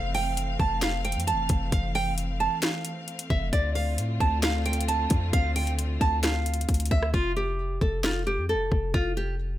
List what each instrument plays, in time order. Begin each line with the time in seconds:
Already playing: 808-style bass F1, string section E3 A3 C4 F5
0.15 nylon-string guitar G5, open hi-hat
0.37 closed hi-hat
0.60 808-style bass F1, nylon-string guitar A5, kick
0.82 nylon-string guitar F5, snare, closed hi-hat
1.05 nylon-string guitar G5, closed hi-hat
1.12 808-style bass F2, closed hi-hat
1.20 closed hi-hat
1.27 nylon-string guitar A5, closed hi-hat
1.33 808-style bass F1
1.49 808-style bass F1, kick, closed hi-hat
1.72 808-style bass F1, nylon-string guitar F5, kick, closed hi-hat
1.95 nylon-string guitar G5, open hi-hat
2.18 closed hi-hat
2.40 nylon-string guitar A5
2.62 nylon-string guitar F5, snare, closed hi-hat
2.85 closed hi-hat
3.08 closed hi-hat
3.19 closed hi-hat
3.30 808-style bass F1, nylon-string guitar E5, kick
3.53 808-style bass D2, string section D3 A3 C4 F4, nylon-string guitar D5, kick, closed hi-hat
3.75 nylon-string guitar F5, open hi-hat
3.98 808-style bass A2, closed hi-hat
4.20 808-style bass D2, nylon-string guitar A5, kick
4.43 nylon-string guitar F5, snare, closed hi-hat
4.66 nylon-string guitar G5, closed hi-hat
4.73 closed hi-hat
4.81 closed hi-hat
4.88 nylon-string guitar A5, closed hi-hat
5.10 808-style bass F2, kick, closed hi-hat
5.33 808-style bass D2, nylon-string guitar F5, kick, closed hi-hat
5.56 nylon-string guitar G5, closed hi-hat, open hi-hat
5.67 closed hi-hat
5.79 closed hi-hat
6.01 808-style bass D2, nylon-string guitar A5, kick
6.23 nylon-string guitar F5, snare, closed hi-hat
6.46 closed hi-hat
6.54 closed hi-hat
6.61 closed hi-hat
6.69 808-style bass D2, kick, closed hi-hat
6.74 closed hi-hat
6.80 closed hi-hat
6.86 closed hi-hat
6.91 808-style bass D2, nylon-string guitar E5, kick
7.03 cross-stick
7.14 808-style bass F1, nylon-string guitar F4, kick
7.36 nylon-string guitar G4
7.81 808-style bass F1, nylon-string guitar A4, kick
8.04 nylon-string guitar F4, snare
8.27 nylon-string guitar G4
8.38 808-style bass F2
8.49 nylon-string guitar A4
8.55 808-style bass F1
8.72 808-style bass F1, kick
8.94 808-style bass F1, nylon-string guitar F4, kick
9.17 nylon-string guitar G4